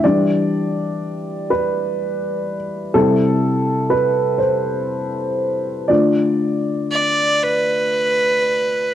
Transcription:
<<
  \new Staff \with { instrumentName = "Fiddle" } { \time 6/8 \key d \dorian \tempo 4. = 40 r2. | r2. | r4 d''8 b'4. | }
  \new Staff \with { instrumentName = "Upright piano" } { \time 6/8 \key d \dorian d''4. b'4 r8 | a'4 b'8 c''4. | d''2~ d''8 r8 | }
  \new Staff \with { instrumentName = "Upright piano" } { \clef bass \time 6/8 \key d \dorian <e g d'>4. r4. | <c g e'>4. r4. | <d a f'>4. r4. | }
>>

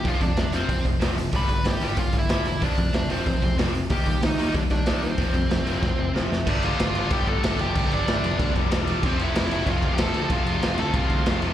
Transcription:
<<
  \new Staff \with { instrumentName = "Lead electric guitar" } { \time 4/4 \key g \mixolydian \tempo 4 = 187 <f' f''>8 <d' d''>4 <c' c''>4 r4. | <b' b''>4 <g' g''>4 <f' f''>8 <e' e''>4. | <d' d''>4 <d' d''>8 <c' c''>4. r4 | <g' g''>4 <ees' ees''>4 <d' d''>8 <d' d''>4 <c' c''>8~ |
<c' c''>2. r4 | <d' d''>8 <f' f''>4. <g' g''>8 <a' a''>4 <g' g''>8~ | <g' g''>8 <d' d''>2 r4. | <c' c''>8 <e' e''>4. <f' f''>8. <g' g''>16 <a' a''>4 |
<f' f''>4. <a' a''>8 <f' f''>4. r8 | }
  \new Staff \with { instrumentName = "Distorted electric guitar" } { \clef bass \time 4/4 \key g \mixolydian <f, c f>8 <f, c>8 <f, c>8 <f, c f>8 <f, c>8 <f, c>8 <f, c f>8 <f, c>8 | <g, d g>8 <g, d>8 <g, d>8 <g, d g>8 <g, d>8 <g, d>8 <g, d g>8 <g, d>8 | <f, c f>8 <f, c>8 <f, c>8 <f, c f>8 <f, c>8 <f, c>8 <f, c f>8 <f, c>8 | <ees g bes>8 <ees g>8 <ees g>8 <ees g bes>8 <ees g>8 <ees g>8 <ees g bes>8 <ees g>8 |
<f, c f>8 <f, c>8 <f, c>8 <f, c f>8 <f, c>8 <f, c>8 <f, c f>8 <f, c>8 | <g, d g b d'>4. <g, d g b d'>4. <g, d g b d'>4 | <g, d g b d'>4. <g, d g b d'>4. <g, d g b d'>4 | <f, c f a c'>4. <f, c f a c'>4. <f, c f a c'>4 |
<f, c f a c'>4. <f, c f a c'>4. <f, c f a c'>4 | }
  \new Staff \with { instrumentName = "Distorted electric guitar" } { \clef bass \time 4/4 \key g \mixolydian <f, c f>8 <f, c>8 <f, c>8 <f, c f>8 <f, c>8 <f, c>8 <f, c f>8 <f, c>8 | <g, d g>8 <g, d>8 <g, d>8 <g, d g>8 <g, d>8 <g, d>8 <g, d g>8 <g, d>8 | <f, c f>8 <f, c>8 <f, c>8 <f, c f>8 <f, c>8 <f, c>8 <f, c f>8 <f, c>8 | <ees bes ees'>8 <ees bes>8 <ees bes>8 <ees bes ees'>8 <ees bes>8 <ees bes>8 <ees bes ees'>8 <ees bes>8 |
<f, c f>8 <f, c>8 <f, c>8 <f, c f>8 <f, c>8 <f, c>8 <f, c f>8 <f, c>8 | <g, d g>2.~ <g, d g>8 <g, d g>8 | <g, d g>2.~ <g, d g>8 <g, d g>8 | <f, c f>2.~ <f, c f>8 <f, c f>8 |
<f, c f>2.~ <f, c f>8 <f, c f>8 | }
  \new Staff \with { instrumentName = "Picked electric bass" } { \clef bass \time 4/4 \key g \mixolydian f,,8 f,8 f,,8 f,,8 f,,8 f,,8 f,,8 f,,8 | g,,8 g,,8 g,,8 g,,8 g,,8 g,,8 g,,8 e,,8 | f,,8 f,8 f,,8 f,,8 f,,8 f,,8 f,,8 f,,8 | ees,8 ees,8 ees,8 ees,8 ees,8 ees,8 ees,8 ees,8 |
f,,8 f,8 f,,8 f,,8 f,,8 f,,8 f,,8 f,,8 | g,,4 g,,8 g,,8 g,,4 g,,8 f,,8 | g,,8 g,,8 g,,8 f,,8 d,8 f,,8 e,,4 | f,,4 f,,8 f,,8 f,,4 f,,8 d,8 |
f,,8 f,,8 f,,8 d,8 c,8 d,8 f,,4 | }
  \new DrumStaff \with { instrumentName = "Drums" } \drummode { \time 4/4 <hho bd>8 <hho bd>8 <hho sn>8 hho8 <hho bd>8 <hho bd>8 <hho sn>8 hho8 | <hho bd>8 <hho bd>8 <hho sn>8 hho8 <hho bd>8 <hho bd>8 <hho sn>8 hho8 | <hho bd>8 <hho bd>8 <hho sn>8 hho8 <hho bd>8 <hho bd>8 <hho sn>8 hho8 | <hho bd>8 <hho bd>8 <hho sn>8 hho8 <hho bd>8 <hho bd>8 <hho sn>8 hho8 |
<hho bd>8 <hho bd>8 <hho sn>8 hho8 <bd sn>4 sn8 sn8 | <cymc bd>8 cymc8 <cymc sn>8 cymc8 <cymc bd>8 <cymc bd>8 <cymc sn>8 cymc8 | <cymc bd>8 cymc8 <cymc sn>8 cymc8 <cymc bd>8 <cymc bd>8 <cymc sn>8 cymc8 | <cymc bd>8 cymc8 <cymc sn>8 cymc8 <cymc bd>8 <cymc bd>8 <cymc sn>8 cymc8 |
<cymc bd>8 cymc8 <cymc sn>8 cymc8 <cymc bd>8 <cymc bd>8 <cymc sn>8 cymc8 | }
>>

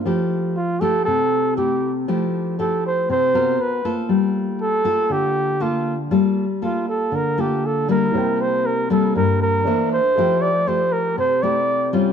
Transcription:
<<
  \new Staff \with { instrumentName = "Grand piano" } { \time 4/4 \key f \major \tempo 4 = 119 r1 | r1 | r1 | r1 |
<e' bes' c'' g''>2. <d' bes' c'' e''>4 | <a' e'' g''>1 | }
  \new Staff \with { instrumentName = "Flugelhorn" } { \time 4/4 \key f \major r4 f'8 a'8 a'4 g'8. r16 | r4 a'8 c''8 c''4 ces''8. r16 | r4 a'4 g'4 f'8. r16 | r4 f'8 a'8 bes'8 g'8 a'8 bes'8~ |
bes'8 c''8 bes'8 a'8 bes'8 bes'4 c''8~ | c''8 d''8 c''8 bes'8 c''8 d''4 r8 | }
  \new Staff \with { instrumentName = "Nylon-string guitar" } { \time 4/4 \key f \major << { <a e' g'>4 r8 <a e' g'>4. <a e' g'>8 r8 | <a e' g'>4 <a e' g'>4. <b ges' bes'>4 <bes f' a'>8~ | <bes f' a'>4. <bes f' a'>4. <bes f' a'>8 r8 | <bes f' a'>8 r8 <bes f' a'>4. <bes f' a'>4 <g bes e'>8~ |
<g bes e'>4. <g bes e'>4. <e bes d'>8 r8 | <a e' g'>8 r8 <a e' g'>4. <a e' g'>4 <g des' f'>8 | } \\ { f2 c2 | f2 c4 r4 | g2 d2 | g2 d2 |
c2 g,4 r4 | f2 c2 | } >> }
>>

